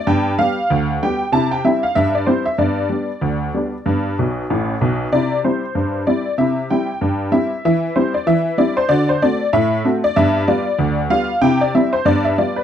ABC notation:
X:1
M:2/4
L:1/16
Q:"Swing 16ths" 1/4=95
K:C
V:1 name="Honky-tonk piano"
g2 f4 g2 | a g e f e d c e | d8- | d6 z2 |
d2 c4 d2 | e2 g4 e2 | e2 c d e2 d c | d c d2 e3 d |
e2 d4 f2 | g d e c d e d B |]
V:2 name="Honky-tonk piano"
[G,,B,]2 [G,B,G]2 D,,2 [G,B,G]2 | [C,E]2 [G,CE]2 G,,2 [G,CE]2 | [G,,B,]2 [G,B,D]2 D,,2 [G,B,D]2 | [G,,B,]2 [B,,,B,,]2 [A,,,A,,]2 [B,,,B,,]2 |
[C,E]2 [G,CE]2 G,,2 [G,CE]2 | [C,E]2 [G,CE]2 G,,2 [G,CE]2 | E,2 [G,CE]2 E,2 [G,CE]2 | [D,^F]2 [A,CF]2 A,,2 [A,CF]2 |
[G,,B,]2 [G,B,F]2 D,,2 [G,B,F]2 | [C,E]2 [G,CE]2 [G,,B,]2 [G,B,F]2 |]